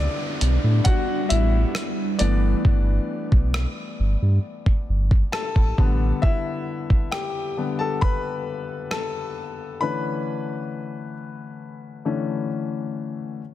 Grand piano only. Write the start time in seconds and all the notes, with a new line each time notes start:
Already playing: D3 G3 B3 D4 E4 D5 E5
0.84 F#4 F#5
1.29 E4 E5
2.19 E3 A3 B3 D4 D5
5.32 A4 A5
5.78 D3 G3 B3
6.22 E4 E5
7.11 G4 G5
7.57 D3 G3 B3
7.79 A4 A5
8.01 B4 B5
8.91 A4 A5
9.81 D3 E3 A3 C#4 B4 B5
12.05 D3 E3 A3 C#4